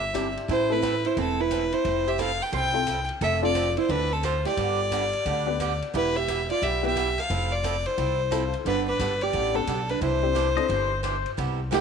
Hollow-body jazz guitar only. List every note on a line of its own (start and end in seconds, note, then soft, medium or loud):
0.51 0.70 E4 medium
0.72 1.05 E4 medium
1.06 1.18 E4 medium
1.18 1.38 C4 medium
1.40 1.72 E4 medium
1.74 2.08 E4 medium
2.08 2.19 G4 medium
2.20 2.42 A4 medium
2.42 2.53 B4 medium
2.54 3.05 C5 medium
3.22 3.42 A4 medium
3.43 3.75 F4 medium
3.78 3.91 E4 medium
3.91 4.13 D4 medium
4.13 4.25 C4 medium
4.25 4.46 F4 medium
4.46 5.78 G4 medium
5.96 6.17 E4 medium
6.17 6.50 G4 medium
6.51 6.64 F4 medium
6.64 6.84 G4 medium
6.86 7.19 G4 medium
7.19 7.54 A4 medium
7.54 7.87 F4 medium
7.87 8.54 E4 medium
8.67 8.86 D4 medium
8.89 9.20 D4 medium
9.23 9.56 G4 medium
9.56 9.90 D4 medium
9.91 10.02 D4 medium
10.03 11.00 E4 medium
11.74 11.81 G4 medium